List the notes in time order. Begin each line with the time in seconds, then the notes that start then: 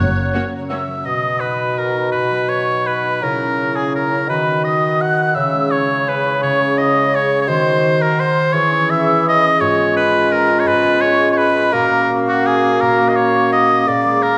Already playing: F#3 A#3 C#4 F#4 A#4 C#5 F#6
0.00 F#1 F#2
0.17 C#3
0.34 A#3 C#4 F#4 A#4 C#5
0.52 F#4
0.69 A#3 C#4 F#4 A#4 C#5 E5 E6
0.88 F#3
1.05 B2 F#4 D#5 D#6
1.22 F#3
1.40 D#4 B4 B5
1.60 D#5
1.78 F#4 A#4 A#5
1.96 D#4
2.12 B2 B4 B5
2.31 F#3
2.49 D#4 C#5 C#6
2.68 D#5
2.86 F#4 B4 B5
3.05 D#4
3.21 C#3 E4 A#4 A#5
3.39 A#3
3.58 E4
3.76 G#4 C#5 G#5
3.94 A#4 A#5
4.12 E4
4.29 D#3 F#4 B4 B5
4.46 D#4
4.64 B4 D#5 D#6
4.83 F#4
5.01 D#5 F#5 F#6
5.18 B4
5.35 C#3 G#4 E5 E6
5.53 G#3
5.71 E4 C#5 C#6
5.89 C#5
6.07 G#4 B4 B5
6.25 E4
6.42 C#3 C#5 C#6
6.59 G#3
6.78 E4 D#5 D#6
6.96 C#5
7.14 G#4 C#5 C#6
7.32 E4
7.42 C#5
7.48 D#3 F#4 C5 C6
7.65 D#4
7.83 C5
8.01 F#4 A#4 A#5
8.19 C5 D#5 C6
8.37 C5
8.53 E3 G#4 C#5 C#6
8.71 C#4
8.89 G#4 E5 E6
9.08 C#4
9.26 C#5 D#5 D#6
9.43 G#4
9.60 G#2 G#3 F4 C#5 C#6
9.78 B3
9.96 C#4 B4 B5
10.14 F4
10.32 A#4 B4 A#5
10.50 C#4
10.59 C#5
10.66 G#2 B4 B5
10.84 B3
11.01 C#4 C#5 C#6
11.20 F4
11.31 C#5
11.37 B4 B5
11.56 C#4
11.73 A#2 A#3 F#4 A#4 A#5
11.90 A#3
12.09 C#4
12.27 F#4 F#5
12.46 G#4 A#4 G#5
12.64 C#4
12.81 A#2 A#4 A#5
12.99 A#3
13.09 D#5
13.16 C#5 C#6
13.35 F#4
13.52 A#4 D#5 D#6
13.71 C#4
13.87 A#2 A#3 G#4 D5 D6
14.05 G#3
14.22 A#3 A#4 A#5